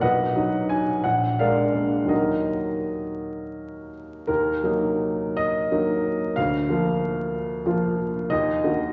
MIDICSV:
0, 0, Header, 1, 2, 480
1, 0, Start_track
1, 0, Key_signature, -6, "minor"
1, 0, Tempo, 695249
1, 10, Time_signature, 6, 3, 24, 8
1, 1451, Tempo, 722892
1, 3851, Tempo, 647249
1, 5771, Tempo, 689655
1, 6205, End_track
2, 0, Start_track
2, 0, Title_t, "Upright piano"
2, 0, Program_c, 0, 0
2, 0, Control_c, 0, 64, 127
2, 8, Note_on_c, 0, 78, 65
2, 13, Note_on_c, 0, 35, 43
2, 16, Note_on_c, 0, 71, 51
2, 16, Note_on_c, 0, 75, 47
2, 24, Control_c, 0, 64, 0
2, 149, Control_c, 0, 64, 127
2, 244, Note_on_c, 0, 54, 35
2, 246, Note_on_c, 0, 63, 39
2, 456, Note_off_c, 0, 71, 0
2, 456, Note_off_c, 0, 75, 0
2, 458, Note_off_c, 0, 54, 0
2, 459, Note_off_c, 0, 63, 0
2, 479, Note_on_c, 0, 80, 52
2, 480, Note_off_c, 0, 78, 0
2, 487, Note_on_c, 0, 63, 30
2, 699, Note_off_c, 0, 63, 0
2, 700, Note_off_c, 0, 35, 0
2, 716, Note_on_c, 0, 78, 59
2, 719, Note_off_c, 0, 80, 0
2, 725, Note_on_c, 0, 34, 44
2, 733, Control_c, 0, 64, 0
2, 839, Control_c, 0, 64, 127
2, 958, Note_off_c, 0, 78, 0
2, 961, Note_on_c, 0, 77, 59
2, 968, Note_on_c, 0, 74, 44
2, 970, Note_on_c, 0, 56, 32
2, 970, Note_on_c, 0, 62, 35
2, 970, Note_on_c, 0, 70, 41
2, 1183, Note_off_c, 0, 56, 0
2, 1183, Note_off_c, 0, 62, 0
2, 1205, Note_on_c, 0, 58, 25
2, 1206, Note_on_c, 0, 62, 28
2, 1414, Note_on_c, 0, 39, 28
2, 1422, Note_off_c, 0, 58, 0
2, 1423, Note_on_c, 0, 54, 26
2, 1428, Note_off_c, 0, 70, 0
2, 1428, Note_off_c, 0, 74, 0
2, 1429, Note_off_c, 0, 62, 0
2, 1432, Note_off_c, 0, 34, 0
2, 1433, Note_on_c, 0, 58, 23
2, 1440, Note_on_c, 0, 63, 24
2, 1441, Note_on_c, 0, 75, 44
2, 1447, Note_on_c, 0, 66, 33
2, 1448, Note_on_c, 0, 70, 36
2, 1452, Note_off_c, 0, 77, 0
2, 1463, Control_c, 0, 64, 0
2, 1576, Control_c, 0, 64, 127
2, 2632, Note_off_c, 0, 66, 0
2, 2632, Note_off_c, 0, 70, 0
2, 2655, Note_off_c, 0, 75, 0
2, 2855, Note_off_c, 0, 39, 0
2, 2860, Note_off_c, 0, 54, 0
2, 2864, Note_off_c, 0, 58, 0
2, 2868, Note_off_c, 0, 63, 0
2, 2893, Note_on_c, 0, 70, 51
2, 2901, Note_on_c, 0, 39, 37
2, 2911, Control_c, 0, 64, 0
2, 3046, Control_c, 0, 64, 127
2, 3130, Note_off_c, 0, 39, 0
2, 3130, Note_on_c, 0, 54, 33
2, 3135, Note_on_c, 0, 58, 33
2, 3139, Note_on_c, 0, 63, 34
2, 3618, Note_on_c, 0, 75, 67
2, 3621, Note_off_c, 0, 70, 0
2, 3822, Note_off_c, 0, 54, 0
2, 3824, Note_off_c, 0, 58, 0
2, 3826, Note_off_c, 0, 63, 0
2, 3847, Note_on_c, 0, 54, 35
2, 3850, Note_on_c, 0, 58, 33
2, 3856, Note_on_c, 0, 63, 36
2, 4301, Note_off_c, 0, 54, 0
2, 4303, Note_off_c, 0, 58, 0
2, 4306, Note_off_c, 0, 63, 0
2, 4329, Note_on_c, 0, 77, 64
2, 4330, Note_off_c, 0, 75, 0
2, 4336, Note_on_c, 0, 38, 39
2, 4348, Control_c, 0, 64, 0
2, 4447, Control_c, 0, 64, 127
2, 4565, Note_off_c, 0, 38, 0
2, 4576, Note_on_c, 0, 53, 34
2, 4579, Note_on_c, 0, 58, 38
2, 4584, Note_on_c, 0, 65, 37
2, 5261, Note_off_c, 0, 53, 0
2, 5263, Note_off_c, 0, 58, 0
2, 5266, Note_off_c, 0, 65, 0
2, 5291, Note_on_c, 0, 53, 40
2, 5294, Note_on_c, 0, 58, 36
2, 5296, Note_on_c, 0, 65, 44
2, 5526, Note_off_c, 0, 77, 0
2, 5743, Note_off_c, 0, 53, 0
2, 5745, Note_off_c, 0, 58, 0
2, 5746, Note_off_c, 0, 65, 0
2, 5767, Note_on_c, 0, 75, 66
2, 5774, Note_on_c, 0, 39, 46
2, 5784, Control_c, 0, 64, 0
2, 5894, Control_c, 0, 64, 127
2, 6003, Note_off_c, 0, 39, 0
2, 6004, Note_on_c, 0, 51, 38
2, 6007, Note_on_c, 0, 58, 36
2, 6013, Note_on_c, 0, 66, 40
2, 6205, Note_off_c, 0, 51, 0
2, 6205, Note_off_c, 0, 58, 0
2, 6205, Note_off_c, 0, 66, 0
2, 6205, Note_off_c, 0, 75, 0
2, 6205, End_track
0, 0, End_of_file